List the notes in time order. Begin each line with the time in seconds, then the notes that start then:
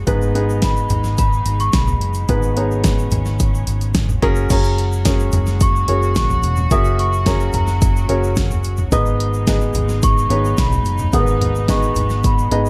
Already playing: G#3
0.07 G#1 G#2 B2 B3 D#4 G#4 B4, kick, closed hi-hat, shaker
0.22 shaker
0.35 B3 D#4 G#4 B4, closed hi-hat
0.50 shaker
0.62 B5, kick, snare, closed hi-hat, shaker
0.77 shaker
0.89 G#1, closed hi-hat, floor tom, shaker
1.04 snare, shaker
1.18 B5, kick, closed hi-hat, shaker
1.33 shaker
1.46 G#1, closed hi-hat, shaker
1.60 C#6, closed hi-hat, shaker
1.73 B1 B5, kick, snare, closed hi-hat, shaker
1.87 floor tom, shaker
2.01 F#1, closed hi-hat
2.14 closed hi-hat, shaker
2.29 G#1 G#2 B3 C#4 D#4 G#4 B4, kick, closed hi-hat, shaker
2.43 shaker
2.57 B3 D#4 G#4 C#5, closed hi-hat
2.71 shaker
2.84 kick, snare, closed hi-hat, shaker
2.99 shaker
3.11 G#1, closed hi-hat, floor tom, shaker
3.26 snare, shaker
3.39 kick, closed hi-hat, shaker
3.55 shaker
3.67 G#1, closed hi-hat, shaker
3.81 closed hi-hat, shaker
3.94 kick, snare, closed hi-hat, shaker
4.09 floor tom, shaker
4.22 F#1 A#2 C#4 F#4 G#4 A#4, kick, closed hi-hat
4.35 shaker
4.50 F#1 A#2 G#3 C#4 F#4 G#4 A#4 C#5 A#5, kick, closed hi-hat, crash, shaker
4.64 shaker
4.78 closed hi-hat
4.92 shaker
5.05 C#4 F#4 G#4 A#4 C#5, kick, snare, closed hi-hat, shaker
5.20 shaker
5.32 F#1, closed hi-hat, floor tom, shaker
5.47 snare, shaker
5.61 C#6, kick, closed hi-hat, shaker
5.76 shaker
5.88 F#1 C#4 F#4 G#4 A#4 C#5, closed hi-hat
6.03 shaker
6.15 A#1 C#6, kick, snare, closed hi-hat, shaker
6.30 floor tom, shaker
6.43 E1, closed hi-hat, shaker
6.56 floor tom, shaker
6.71 F#1 F#3 C#4 F#4 G#4 A#4 E5 D#6, kick, closed hi-hat, shaker
6.85 shaker
6.99 C#6, closed hi-hat
7.13 shaker
7.26 C#4 F#4 G#4 A#4 C#5 A#5, kick, snare, closed hi-hat, shaker
7.40 shaker
7.53 F#1 A#5, closed hi-hat, floor tom, shaker
7.67 snare, shaker
7.81 kick, closed hi-hat, shaker
7.96 shaker
8.09 F#1 C#4 F#4 G#4 A#4 C#5, closed hi-hat
8.24 shaker
8.36 kick, snare, closed hi-hat, shaker
8.51 floor tom, shaker
8.64 closed hi-hat, shaker
8.77 floor tom, shaker
8.92 G#1 G#2 B2 G#3 B3 D#4 G#4 B4 D#5 D#6, kick, closed hi-hat, shaker
9.06 shaker
9.20 closed hi-hat
9.34 shaker
9.47 B3 D#4 G#4 B4 D#5, kick, snare, closed hi-hat, shaker
9.61 shaker
9.74 G#1, closed hi-hat, floor tom, shaker
9.89 snare, shaker
10.02 C#6, kick, closed hi-hat, shaker
10.18 shaker
10.30 G#1 B3 D#4 G#4 B4 C#5, closed hi-hat
10.45 shaker
10.57 B1 B5, kick, snare, closed hi-hat, shaker
10.72 floor tom, shaker
10.85 F#1, closed hi-hat, shaker
10.98 floor tom, shaker
11.13 G#1 G#2 B3 D#4 G#4 A#4 F#5 D#6, kick, closed hi-hat, shaker
11.20 B4
11.27 shaker
11.41 closed hi-hat, floor tom
11.55 shaker
11.68 B3 D#4 G#4 B4 D#5 C#6, kick, snare, closed hi-hat, shaker
11.83 shaker
11.95 G#1, closed hi-hat, floor tom, shaker
12.10 snare, shaker
12.24 B5, kick, closed hi-hat, shaker
12.39 shaker
12.51 G#1 B3 D#4 G#4 B4 D#5, closed hi-hat
12.66 shaker